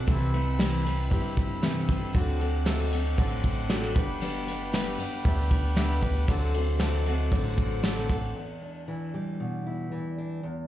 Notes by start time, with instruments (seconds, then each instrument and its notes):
Already playing: pipe organ C4
0.06 fingered electric bass C2, upright piano C2 C3 G3 C4 E4 B4 E5, steel-string acoustic guitar C3 E3 G3 C4 E4 B4, pipe organ B5 E6, kick, ride
0.33 steel-string acoustic guitar G3 C4 E4 B4, ride
0.58 steel-string acoustic guitar C3 E3 G3 C4 E4 B4, upright piano G3 C4 E4 B4 G5, snare, ride
0.84 steel-string acoustic guitar G3 C4 E4 B4, ride
1.10 fingered electric bass G2, steel-string acoustic guitar G3 C4 E4 B4, upright piano G3 C4 E4 B4 E5, kick, ride
1.37 kick, ride
1.62 steel-string acoustic guitar C3 E3 G3 C4 E4 B4, upright piano G3 C4 E4 B4 E5, snare, ride
1.88 steel-string acoustic guitar G3 C4 E4 B4, kick, ride
2.13 upright piano D2 D3 F#3 C4 D4 A4 D5, fingered electric bass D2, steel-string acoustic guitar D3 C4 F#4 A4, pipe organ F#5 D6, kick, ride
2.39 steel-string acoustic guitar C4 F#4 A4, ride
2.65 steel-string acoustic guitar D3 C4 F#4 A4, upright piano F#3 C4 D4 A4 E5, snare, ride
2.91 steel-string acoustic guitar C4 F#4 A4, ride
3.16 fingered electric bass A1, steel-string acoustic guitar D3 C4 F#4 A4, upright piano F#3 C4 D4 A4 D5, kick, ride
3.44 kick, ride
3.68 steel-string acoustic guitar D3 C4 F#4 A4, upright piano F#3 C4 D4 A4 D5, snare, ride
3.83 snare
3.94 upright piano G1 G2 G3 B3 D4 B4 D5, fingered electric bass G1, steel-string acoustic guitar B3 D4 B4, pipe organ B4 G5, kick, ride
4.21 steel-string acoustic guitar G3 B3 D4 B4, ride
4.47 steel-string acoustic guitar B3 D4 B4, ride
4.73 steel-string acoustic guitar G3 B3 D4 B4, upright piano G3 B3 D4 B4 E5, snare, ride
4.98 steel-string acoustic guitar B3 D4 B4, ride
5.24 fingered electric bass D2, steel-string acoustic guitar G3 B3 D4 B4, upright piano G3 B3 D4 B4 E5, kick, ride
5.51 kick, ride
5.76 steel-string acoustic guitar G3 B3 D4 B4, upright piano G3 B3 D4 B4 E5, snare, ride
6.02 steel-string acoustic guitar B3 D4 B4, kick, ride
6.28 upright piano D2 D3 F#3 C4 D4 A4 D5, fingered electric bass D2, steel-string acoustic guitar D3 C4 F#4 A4, pipe organ C5 F#5, kick, ride
6.54 steel-string acoustic guitar C4 F#4 A4, ride
6.79 steel-string acoustic guitar D3 C4 F#4 A4, upright piano F#3 C4 D4 A4 E5, snare, ride
7.06 steel-string acoustic guitar C4 F#4 A4, ride
7.31 fingered electric bass A1, steel-string acoustic guitar D3 C4 F#4 A4, upright piano F#3 C4 D4 A4 D5, kick, ride
7.58 kick, ride
7.83 steel-string acoustic guitar D3 C4 F#4 A4, upright piano F#3 C4 D4 A4 D5, snare, ride
7.97 snare
8.09 steel-string acoustic guitar C4 F#4 A4, kick, ride
8.35 steel-string acoustic guitar E2
8.62 steel-string acoustic guitar D4
8.88 steel-string acoustic guitar E3
9.14 steel-string acoustic guitar G3
9.40 steel-string acoustic guitar B2
9.66 steel-string acoustic guitar E4
9.91 steel-string acoustic guitar E3
10.18 steel-string acoustic guitar D4
10.43 steel-string acoustic guitar E2